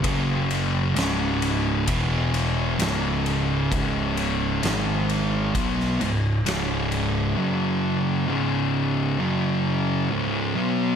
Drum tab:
RD |x-x-x-x-x-x-x-x-|x-x-x-x-x-x-x-x-|----------------|
SD |----o-------o---|----o----o--o---|----------------|
BD |o-------o-------|o-------o-------|----------------|